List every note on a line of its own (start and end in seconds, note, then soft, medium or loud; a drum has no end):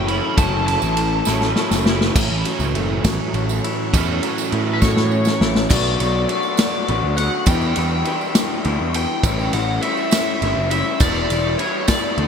0.00 0.19 F#1 medium
0.00 0.36 A2 medium
0.00 0.37 E3 medium
0.00 0.37 F#3 medium
0.07 0.37 A3 medium
0.07 0.38 C#4 medium
0.07 0.38 E4 medium
0.07 0.37 B5 medium
0.07 ride medium
0.36 0.76 F#1 loud
0.36 0.97 A2 loud
0.36 1.26 E3 loud
0.36 0.97 F#3 medium
0.36 0.69 A3 loud
0.36 0.67 C#4 loud
0.36 0.66 E4 loud
0.36 0.65 A5 medium
0.36 kick loud
0.36 ride loud
0.36 tambourine medium
0.67 1.27 A3 medium
0.67 1.26 C#4 medium
0.67 1.25 E4 medium
0.67 1.82 A5 medium
0.67 ride medium
0.82 1.20 A1 loud
0.82 tambourine medium
0.97 ride medium
1.25 1.52 A1 loud
1.25 1.87 A2 medium
1.25 1.54 E3 medium
1.25 1.55 F#3 medium
1.25 1.56 A3 medium
1.25 1.57 C#4 medium
1.25 1.58 E4 medium
1.25 snare medium
1.25 tambourine medium
1.41 snare medium
1.41 tambourine soft
1.56 2.13 E3 medium
1.56 2.14 F#3 medium
1.56 1.88 A3 medium
1.56 1.86 C#4 medium
1.56 1.85 E4 medium
1.56 snare medium
1.71 2.09 F#1 medium
1.71 snare medium
1.71 tambourine medium
1.86 2.15 A3 medium
1.86 2.15 C#4 medium
1.86 2.14 E4 medium
1.86 snare loud
2.01 snare medium
2.15 2.28 A1 loud
2.15 3.64 A2 medium
2.15 3.91 E3 loud
2.15 3.93 A3 medium
2.15 3.92 C#4 loud
2.15 5.67 E4 medium
2.15 3.92 E4 loud
2.15 5.67 A4 medium
2.15 5.67 C#5 medium
2.15 5.67 F#5 medium
2.15 kick loud
2.15 crash loud
2.15 tambourine loud
2.31 2.43 A1 medium
2.45 3.05 F#3 medium
2.45 ride medium
2.60 2.72 C#2 medium
2.60 tambourine medium
2.74 3.00 F#1 medium
2.74 4.23 A3 medium
2.74 ride medium
3.04 3.17 A1 loud
3.04 4.22 F#3 medium
3.04 kick medium
3.04 snare loud
3.04 ride loud
3.04 tambourine loud
3.34 3.59 A1 loud
3.34 4.82 C#4 medium
3.34 ride medium
3.34 tambourine soft
3.49 tambourine medium
3.64 5.11 E4 medium
3.64 ride medium
3.93 4.19 E2 loud
3.93 5.41 A2 medium
3.93 5.68 E3 loud
3.93 5.69 A3 medium
3.93 5.69 C#4 loud
3.93 5.69 E4 medium
3.93 kick loud
3.93 ride loud
3.93 tambourine medium
4.23 4.81 F#3 medium
4.23 ride medium
4.38 tambourine medium
4.52 5.28 A2 medium
4.52 5.71 A3 medium
4.52 ride medium
4.73 4.81 B4 medium
4.82 5.70 F#3 medium
4.82 5.66 C#5 medium
4.82 kick medium
4.82 snare medium
4.82 tambourine loud
4.96 snare medium
5.11 5.70 C#4 medium
5.11 tambourine soft
5.25 snare medium
5.25 tambourine medium
5.41 5.66 A1 medium
5.41 5.70 E4 medium
5.41 snare loud
5.55 snare medium
5.70 5.96 B1 loud
5.70 5.99 B2 medium
5.70 5.99 F#3 loud
5.70 6.00 A3 medium
5.70 9.20 D4 medium
5.70 6.01 D4 loud
5.70 6.01 F#4 loud
5.70 7.45 A4 medium
5.70 9.20 B4 medium
5.70 6.28 D5 loud
5.70 7.45 F#5 medium
5.70 kick loud
5.70 crash loud
5.70 tambourine medium
6.00 6.25 B1 loud
6.00 6.28 B2 medium
6.00 6.29 F#3 medium
6.00 6.29 A3 medium
6.00 6.31 D4 medium
6.00 6.30 F#4 medium
6.00 ride medium
6.29 6.57 B2 medium
6.29 6.58 F#3 medium
6.29 6.58 A3 medium
6.29 6.59 D4 medium
6.29 6.59 F#4 loud
6.29 7.17 D5 loud
6.29 ride medium
6.43 tambourine soft
6.57 6.87 B2 medium
6.57 6.88 F#3 medium
6.57 6.88 A3 loud
6.57 6.89 D4 loud
6.57 6.89 F#4 loud
6.57 snare loud
6.57 ride loud
6.57 tambourine medium
6.88 7.01 A1 medium
6.88 7.16 B2 medium
6.88 7.17 F#3 medium
6.88 7.17 A3 medium
6.88 7.18 D4 medium
6.88 7.19 F#4 loud
6.88 ride medium
7.03 7.28 D2 medium
7.17 7.45 B2 medium
7.17 7.45 F#3 medium
7.17 7.46 A3 medium
7.17 7.46 D4 loud
7.17 7.46 F#4 medium
7.17 7.45 F#5 loud
7.17 ride medium
7.17 tambourine soft
7.46 7.74 E2 medium
7.46 7.72 E2 loud
7.46 7.75 B2 loud
7.46 7.76 E3 loud
7.46 7.76 G3 medium
7.46 7.76 D4 medium
7.46 7.77 E4 loud
7.46 9.22 E5 medium
7.46 9.21 G5 medium
7.46 8.95 G5 loud
7.46 kick loud
7.46 ride loud
7.46 tambourine loud
7.62 tambourine soft
7.76 8.04 E2 medium
7.76 8.02 E2 loud
7.76 8.05 B2 medium
7.76 8.06 E3 medium
7.76 8.07 G3 medium
7.76 8.06 D4 loud
7.76 8.07 E4 loud
7.76 ride medium
8.05 8.33 E2 medium
8.05 8.34 B2 loud
8.05 8.35 E3 medium
8.05 8.36 G3 loud
8.05 8.35 D4 medium
8.05 8.37 E4 loud
8.05 ride medium
8.21 tambourine soft
8.35 8.63 E2 medium
8.35 8.64 B2 loud
8.35 8.65 E3 medium
8.35 8.65 G3 loud
8.35 8.65 D4 loud
8.35 8.66 E4 medium
8.35 snare loud
8.35 ride loud
8.35 tambourine loud
8.64 8.78 D2 loud
8.64 8.93 E2 medium
8.64 8.93 B2 medium
8.64 8.95 E3 medium
8.64 8.95 G3 medium
8.64 8.95 D4 loud
8.64 8.96 E4 loud
8.64 ride medium
8.81 9.05 E2 medium
8.94 9.22 E2 medium
8.94 9.22 B2 medium
8.94 9.24 E3 loud
8.94 9.25 G3 medium
8.94 9.23 D4 medium
8.94 9.26 E4 medium
8.94 9.53 G5 loud
8.94 ride medium
8.94 tambourine soft
9.23 9.49 A1 loud
9.23 9.53 A2 loud
9.23 9.54 E3 loud
9.23 9.55 G3 loud
9.23 10.99 C#4 medium
9.23 9.54 C#4 loud
9.23 9.55 E4 loud
9.23 10.99 A4 medium
9.23 12.28 E5 medium
9.23 10.99 G5 loud
9.23 kick loud
9.23 ride loud
9.23 tambourine loud
9.39 tambourine soft
9.53 9.78 A1 loud
9.53 9.82 A2 medium
9.53 9.83 E3 loud
9.53 9.83 G3 medium
9.53 9.83 C#4 medium
9.53 9.84 E4 medium
9.53 9.82 F#5 loud
9.53 ride medium
9.82 10.11 A2 medium
9.82 10.11 E3 medium
9.82 10.12 G3 medium
9.82 10.12 C#4 loud
9.82 10.13 E4 loud
9.82 10.70 E5 loud
9.82 ride medium
9.97 tambourine soft
10.11 10.40 A2 medium
10.11 10.41 E3 medium
10.11 10.41 G3 medium
10.11 10.42 C#4 medium
10.11 10.42 E4 loud
10.11 snare loud
10.11 ride loud
10.11 tambourine loud
10.42 10.54 G1 loud
10.42 10.69 A2 medium
10.42 10.69 E3 medium
10.42 10.70 G3 medium
10.42 10.70 C#4 loud
10.42 10.71 E4 loud
10.42 ride medium
10.57 10.82 F#1 medium
10.70 10.98 A2 medium
10.70 10.98 E3 medium
10.70 10.99 G3 medium
10.70 10.99 C#4 medium
10.70 10.99 E4 loud
10.70 10.98 E5 loud
10.70 ride medium
10.70 tambourine soft
10.99 11.25 E1 loud
10.99 11.28 E2 loud
10.99 11.28 B2 loud
10.99 11.29 E3 loud
10.99 11.29 G3 loud
10.99 12.28 D4 medium
10.99 11.30 D4 loud
10.99 11.30 E4 loud
10.99 12.28 B4 medium
10.99 11.55 D5 loud
10.99 12.28 G5 loud
10.99 kick loud
10.99 ride loud
10.99 tambourine loud
11.15 tambourine soft
11.29 11.55 E1 loud
11.29 11.56 E2 medium
11.29 11.57 B2 medium
11.29 11.58 E3 medium
11.29 11.59 G3 medium
11.29 11.59 D4 medium
11.29 11.59 E4 loud
11.29 ride medium
11.58 11.87 E2 medium
11.58 11.87 B2 medium
11.58 11.88 E3 medium
11.58 11.88 G3 loud
11.58 11.90 D4 loud
11.58 11.89 E4 loud
11.58 11.88 C#5 loud
11.58 ride medium
11.58 tambourine soft
11.88 12.16 E2 loud
11.88 12.17 B2 medium
11.88 12.17 E3 medium
11.88 12.18 G3 loud
11.88 12.19 D4 loud
11.88 12.19 E4 loud
11.88 12.28 D5 medium
11.88 kick medium
11.88 snare loud
11.88 ride loud
11.88 tambourine medium
12.17 12.28 D2 medium
12.17 12.28 E2 medium
12.17 12.28 B2 medium
12.17 12.28 E3 loud
12.17 12.28 G3 medium
12.17 12.28 D4 medium
12.17 12.28 E4 medium
12.17 ride medium